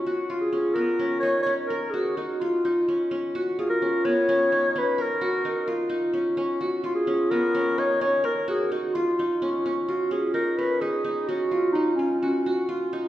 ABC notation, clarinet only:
X:1
M:7/4
L:1/16
Q:1/4=128
K:F#
V:1 name="Clarinet"
z2 E G3 A4 c2 c2 A2 G2 F2 E6 z2 | z2 G A3 c6 B2 A6 z8 | z2 E G3 A4 c2 c2 A2 G2 F2 E6 z2 | F2 G2 A2 B2 G4 F4 D2 C2 C4 E3 z |]